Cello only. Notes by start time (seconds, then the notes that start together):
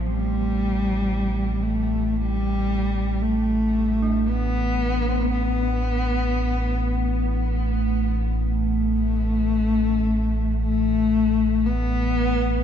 0.06 G3
1.62 A3
2.16 G3
3.22 A3
4.28 B3
5.31 B3
8.48 A3
10.61 A3
11.66 B3